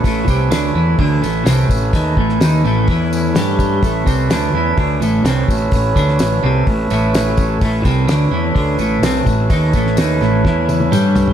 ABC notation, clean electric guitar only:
X:1
M:4/4
L:1/8
Q:1/4=127
K:Amix
V:1 name="Clean electric guitar" clef=bass
A,, =C, D, E, D, A,, C, A,, | ^D, A,, D, A,, E,2 G,2 | A,, =C, D, E, D, A,, C, A,, | A,, D, A,, =C, A,, A,,3 |
A,, =C, D, E, D, A,, C, A,, | ^D, A,, D, A,, E,2 G,2 |]